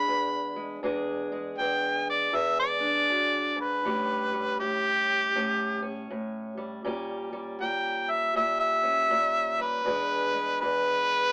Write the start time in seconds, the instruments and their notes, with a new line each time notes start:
Already playing: steel-string acoustic guitar G#3 D4 G#4, harmonica B5
0.08 steel-string acoustic guitar E2
0.56 steel-string acoustic guitar G#3
0.83 steel-string acoustic guitar E2 G#3 D4 G#4
1.32 steel-string acoustic guitar G#3
1.58 steel-string acoustic guitar E2, harmonica G5
2.10 harmonica D5
2.33 steel-string acoustic guitar E2 G#4, harmonica E5
2.60 harmonica D5
2.80 steel-string acoustic guitar D4
3.09 steel-string acoustic guitar F#2
3.56 steel-string acoustic guitar G#2
3.61 harmonica B4
3.85 steel-string acoustic guitar A2 G3 C#4 G4
4.33 steel-string acoustic guitar G3
4.60 steel-string acoustic guitar A2, harmonica G4
5.36 steel-string acoustic guitar A2 C#4
5.82 steel-string acoustic guitar C#4
6.10 steel-string acoustic guitar A2
6.57 steel-string acoustic guitar G3
6.84 steel-string acoustic guitar A#2 G3 C#4 G4
7.33 steel-string acoustic guitar G3
7.60 steel-string acoustic guitar A#2, harmonica G5
8.11 harmonica E5
8.35 steel-string acoustic guitar A#2 G4, harmonica E5
8.60 harmonica E5
8.83 steel-string acoustic guitar C#4
9.10 steel-string acoustic guitar A#2
9.58 steel-string acoustic guitar G3, harmonica B4
9.85 steel-string acoustic guitar E2 G#3 D4 G#4
10.34 steel-string acoustic guitar G#3
10.61 steel-string acoustic guitar E2, harmonica B4